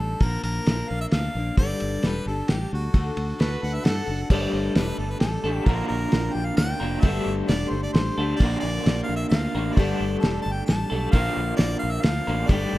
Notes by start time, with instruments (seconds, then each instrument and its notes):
Already playing: steel-string acoustic guitar G3 D4 G4 A4, harmonica A4
0.00 fingered electric bass A1
0.20 fingered electric bass A#1, steel-string acoustic guitar A#2 D3 F3 A#3 D4 A#4, harmonica A#4, kick, ride
0.43 fingered electric bass A#1, harmonica A#4, ride
0.66 fingered electric bass A#1, steel-string acoustic guitar F3 A#3 D4 A#4, snare, ride
0.88 fingered electric bass A#1, steel-string acoustic guitar F3 A#3 D4 A#4, harmonica F5
1.01 harmonica E5
1.11 fingered electric bass D2, steel-string acoustic guitar F3 A#3 D4, harmonica F5, snare, ride
1.16 steel-string acoustic guitar A#4
1.35 fingered electric bass A#1, steel-string acoustic guitar A#3 D4 A#4
1.40 steel-string acoustic guitar F3
1.57 fingered electric bass G1, steel-string acoustic guitar G2 D3 G3 D4 G4 A4, harmonica D5, kick, ride
1.80 fingered electric bass G1, ride
2.03 fingered electric bass E1, steel-string acoustic guitar G3 D4 G4, snare, ride
2.07 steel-string acoustic guitar A4, harmonica B4
2.26 fingered electric bass G1, steel-string acoustic guitar D4 G4 A4, harmonica A4
2.31 steel-string acoustic guitar G3
2.48 fingered electric bass A1, steel-string acoustic guitar G3 D4 G4 A4, harmonica G4, snare, ride
2.73 fingered electric bass D2, harmonica F#4
2.94 fingered electric bass D2, steel-string acoustic guitar D3 A3 D4 F#4 A4, kick, ride
3.17 fingered electric bass D2, ride
3.39 fingered electric bass D2, steel-string acoustic guitar A3 D4 F#4 A4, electric slide guitar B4, snare, ride
3.62 fingered electric bass D2, steel-string acoustic guitar D4 F#4 A4, harmonica F#5
3.74 harmonica E5
3.84 fingered electric bass G2, steel-string acoustic guitar A3 D4 F#4 A4, harmonica F#5, snare, ride
4.07 fingered electric bass F#1, steel-string acoustic guitar D4 F#4 A4
4.30 fingered electric bass G1, steel-string acoustic guitar G2 D3 G3 D4 G4 A4, clean electric guitar A3, harmonica D5, kick, crash
4.53 fingered electric bass G1
4.75 fingered electric bass E1, steel-string acoustic guitar G3 D4 G4 A4, harmonica B4, snare, ride
4.98 fingered electric bass G1, harmonica A4
5.11 harmonica B4
5.20 fingered electric bass A1, steel-string acoustic guitar G3 D4 G4 A4, harmonica A4, snare, ride
5.44 fingered electric bass A1, clean electric guitar A3, steel-string acoustic guitar D4 G4 A4
5.48 steel-string acoustic guitar G3
5.56 harmonica G4
5.66 fingered electric bass A#1, steel-string acoustic guitar A#2 D3 F3 A#3 D4 A#4, harmonica A#4, kick, ride
5.88 fingered electric bass A#1, harmonica A#4
6.11 fingered electric bass A#1, steel-string acoustic guitar F3 A#3 D4 A#4, snare, ride
6.34 fingered electric bass A#1, harmonica G5
6.46 harmonica F5
6.57 fingered electric bass D2, steel-string acoustic guitar F3 A#3 D4 A#4, harmonica G5, snare, ride
6.80 fingered electric bass F1, clean electric guitar A#2 D3 F3 A#3 D4 A#4
7.01 fingered electric bass G1, steel-string acoustic guitar G2 D3 G3 D4 G4 A4, clean electric guitar A3, harmonica E5, kick, ride
7.26 fingered electric bass G1
7.48 fingered electric bass E1, steel-string acoustic guitar G3 D4 G4, harmonica D5, snare, ride
7.53 steel-string acoustic guitar A4
7.70 fingered electric bass G1, steel-string acoustic guitar G4 A4, harmonica C5
7.74 steel-string acoustic guitar G3 D4
7.83 harmonica D5
7.93 fingered electric bass A1, steel-string acoustic guitar G3 D4 G4, harmonica C5, snare, ride
7.98 steel-string acoustic guitar A4
8.18 fingered electric bass D2, steel-string acoustic guitar G3 D4 G4 A4, clean electric guitar A3
8.36 fingered electric bass A#1, steel-string acoustic guitar A#2, harmonica D5
8.40 steel-string acoustic guitar D3 F3 A#3 D4 A#4, kick, ride
8.60 fingered electric bass A#1, harmonica D5
8.86 fingered electric bass A#1, steel-string acoustic guitar F3 A#3 D4 A#4, snare, ride
9.04 steel-string acoustic guitar A#4, harmonica F5
9.09 fingered electric bass A#1, steel-string acoustic guitar F3 A#3 D4
9.16 harmonica E5
9.29 fingered electric bass D2, steel-string acoustic guitar F3 A#3, harmonica F5, snare, ride
9.33 steel-string acoustic guitar D4 A#4
9.54 fingered electric bass A1, clean electric guitar D3, steel-string acoustic guitar F3 A#3 D4 A#4
9.59 clean electric guitar A#2
9.74 fingered electric bass G1, steel-string acoustic guitar G2, clean electric guitar A3, harmonica D5, kick, ride
9.79 steel-string acoustic guitar D3 G3 D4 G4 A4
10.00 fingered electric bass G1
10.19 steel-string acoustic guitar G3, harmonica A4, ride
10.23 fingered electric bass E1, steel-string acoustic guitar D4 G4 A4, snare
10.42 harmonica A5
10.46 fingered electric bass G1
10.52 harmonica G5
10.66 fingered electric bass A1, steel-string acoustic guitar G3 D4, harmonica A5, snare, ride
10.70 steel-string acoustic guitar G4 A4
10.90 fingered electric bass B1, clean electric guitar G3 A3 D4 A4
11.12 fingered electric bass A#1, steel-string acoustic guitar A#2 D3 F3 A#3 D4 A#4, harmonica F5, kick, ride
11.37 fingered electric bass A#1
11.57 fingered electric bass A#1, steel-string acoustic guitar F3 A#3 D4, harmonica D5, snare, ride
11.61 steel-string acoustic guitar A#4
11.79 harmonica F5
11.83 fingered electric bass A#1
11.91 harmonica E5
12.01 fingered electric bass D2, steel-string acoustic guitar F3 A#3 D4, harmonica F5, snare, ride
12.06 steel-string acoustic guitar A#4
12.27 fingered electric bass A1, clean electric guitar D3, steel-string acoustic guitar F3 A#3 D4 A#4
12.31 clean electric guitar A#2
12.48 fingered electric bass G1, steel-string acoustic guitar G2 D3 G3 D4 G4, clean electric guitar A3, harmonica D5, kick, ride
12.52 steel-string acoustic guitar A4
12.73 fingered electric bass G1